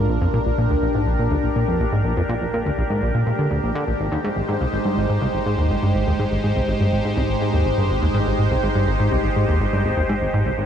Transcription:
0.00 3.97 A#1 medium
0.00 3.96 D4 medium
0.00 3.96 A#4 medium
0.09 0.18 A#1 medium
0.09 10.66 G4 medium
0.21 0.27 F2 loud
0.34 0.39 A#2 loud
0.46 0.51 A#1 medium
0.58 0.67 A#2 medium
0.70 0.76 D2 medium
0.83 0.88 A#1 loud
0.95 1.06 G#2 medium
1.07 1.16 A#1 medium
1.19 1.28 A#2 medium
1.31 1.37 D2 medium
1.44 1.49 A#1 medium
1.56 1.65 A#2 medium
1.68 1.80 F2 medium
1.80 1.85 A#1 loud
1.92 2.04 G#2 medium
2.05 2.13 A#1 medium
2.17 2.22 F2 loud
2.29 2.34 A#2 loud
2.41 2.46 A#1 medium
2.54 2.62 A#2 medium
2.66 2.71 D2 medium
2.78 2.83 A#1 loud
2.90 3.02 G#2 medium
3.02 3.11 A#1 medium
3.15 3.23 A#2 medium
3.27 3.32 A#2 medium
3.39 3.48 D3 medium
3.51 3.60 D2 medium
3.63 3.72 A#1 medium
3.75 3.84 D3 loud
3.88 3.93 A#1 medium
4.00 4.09 G#1 medium
4.00 10.66 G#3 medium
4.00 10.66 D#4 medium
4.00 10.66 C5 medium
4.12 4.17 D#2 loud
4.24 4.29 G#2 loud
4.36 4.41 G#1 medium
4.48 4.57 G#2 medium
4.61 4.66 C2 medium
4.73 4.78 G#1 loud
4.85 4.97 G2 medium
4.97 5.06 G#1 medium
5.09 5.18 G#2 medium
5.22 5.27 C2 loud
5.34 5.39 G#1 medium
5.46 5.55 G#2 medium
5.58 5.70 D#2 medium
5.70 5.76 G#1 loud
5.83 5.94 G2 medium
5.95 6.04 G#1 medium
6.07 6.12 D#2 loud
6.19 6.25 G#2 loud
6.32 6.37 G#1 medium
6.44 6.52 G#2 medium
6.56 6.61 C2 medium
6.68 6.73 G#1 loud
6.80 6.92 G2 medium
6.93 7.01 G#1 medium
7.05 7.13 G#2 medium
7.17 7.22 C2 loud
7.29 7.34 G#1 medium
7.41 7.50 G#2 medium
7.53 7.65 D#2 medium
7.65 7.71 G#1 loud
7.78 7.89 G2 medium
7.90 7.99 G#1 medium
8.02 8.07 D#2 loud
8.14 8.20 G#2 loud
8.27 8.32 G#1 medium
8.39 8.48 G#2 medium
8.51 8.56 C2 medium
8.63 8.68 G#1 loud
8.75 8.87 G2 medium
8.88 8.96 G#1 medium
9.00 9.09 G#2 medium
9.12 9.17 C2 loud
9.24 9.29 G#1 medium
9.36 9.45 G#2 medium
9.48 9.60 D#2 medium
9.61 9.66 G#1 loud
9.73 9.84 G2 medium
9.85 9.94 G#1 medium
9.97 10.02 D#2 medium
10.09 10.15 G#2 loud
10.22 10.27 G#1 medium
10.34 10.43 G#2 medium
10.46 10.51 C2 medium
10.58 10.63 G#1 loud

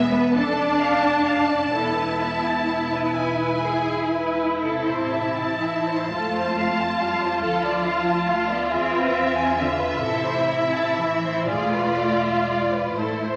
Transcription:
0.00 0.32 E1 medium
0.00 0.12 G#3 loud
0.00 0.32 B3 medium
0.00 0.12 E5 medium
0.00 0.32 E5 medium
0.12 0.35 B3 medium
0.12 0.34 B4 medium
0.35 1.75 F1 medium
0.35 1.75 D4 medium
0.35 1.76 D4 loud
0.35 0.57 A4 medium
0.35 3.14 A5 medium
0.59 0.81 D5 medium
0.81 1.04 F5 medium
1.04 1.27 A5 medium
1.26 1.50 F5 soft
1.50 1.74 D5 medium
1.73 4.37 E1 medium
1.73 3.15 B3 medium
1.73 6.08 E4 medium
1.73 1.96 A4 medium
1.97 2.22 B4 soft
2.21 2.45 E5 soft
2.46 2.70 A5 soft
2.69 2.94 E5 soft
2.93 3.15 B4 soft
3.17 3.62 B4 medium
3.17 4.41 G#5 soft
3.65 4.14 G#4 medium
4.14 4.61 B4 soft
4.62 6.08 A1 soft
4.62 5.58 C3 medium
4.62 4.84 A4 soft
4.62 8.68 A5 soft
4.86 5.11 C5 soft
5.10 5.36 E5 soft
5.36 5.62 A5 soft
5.62 6.12 E3 medium
5.62 5.88 E5 soft
5.87 6.12 C5 soft
6.12 7.41 F2 medium
6.12 7.01 A3 medium
6.12 10.01 F4 medium
6.12 6.34 A4 soft
6.35 6.58 C5 soft
6.57 6.79 F5 soft
6.81 7.01 A5 soft
7.01 7.43 G3 medium
7.01 7.22 F5 soft
7.22 7.43 C5 soft
7.43 8.69 D2 soft
7.43 8.27 F3 medium
7.43 7.63 A4 medium
7.64 7.85 D5 soft
7.86 8.07 F5 soft
8.08 8.29 A5 soft
8.28 8.51 A3 medium
8.28 8.50 F5 soft
8.50 8.72 B3 medium
8.50 8.72 D5 soft
8.71 10.01 E2 medium
8.71 9.56 C4 medium
8.71 8.91 G#4 soft
8.71 11.43 E5 medium
8.93 9.14 B4 medium
9.14 9.36 E5 medium
9.36 9.57 G#5 soft
9.58 10.01 D3 medium
9.58 9.79 E5 soft
9.79 10.01 B4 soft
10.01 11.45 A1 medium
10.01 10.97 C3 medium
10.01 11.47 E4 medium
10.01 10.22 A4 medium
10.24 10.47 C5 medium
10.48 10.72 E5 medium
10.73 10.97 A5 soft
10.97 11.47 E3 medium
10.97 11.23 E5 soft
11.24 11.48 C5 soft
11.48 12.96 E1 medium
11.48 12.46 A3 medium
11.48 12.96 F4 medium
11.48 11.71 G#4 soft
11.48 12.93 D5 medium
11.72 11.96 B4 soft
11.97 12.21 D5 soft
12.23 12.46 E5 soft
12.45 12.96 G#3 medium
12.45 12.71 D5 soft
12.72 12.97 B4 soft
12.95 13.36 A1 soft
12.95 13.36 A3 medium
12.95 13.36 E4 soft
12.95 13.20 A4 soft
12.95 13.36 C5 soft
13.23 13.36 C5 soft

